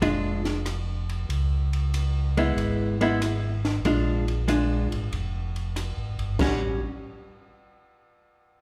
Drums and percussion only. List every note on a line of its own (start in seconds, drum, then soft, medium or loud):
0.02 ride medium
0.45 snare soft
0.45 ride soft
0.66 cross-stick medium
0.66 hi-hat pedal medium
0.66 ride medium
1.09 ride soft
1.30 ride medium
1.73 ride soft
1.94 hi-hat pedal medium
1.94 ride medium
2.37 ride soft
2.58 ride medium
3.01 ride soft
3.22 cross-stick medium
3.22 hi-hat pedal medium
3.22 ride medium
3.65 snare soft
3.65 ride soft
3.85 ride medium
4.28 ride soft
4.48 hi-hat pedal medium
4.48 ride medium
4.92 ride soft
5.13 ride medium
5.56 ride soft
5.76 cross-stick medium
5.76 hi-hat pedal soft
5.76 ride medium
6.19 ride soft
6.39 kick medium
6.39 snare medium
6.39 crash medium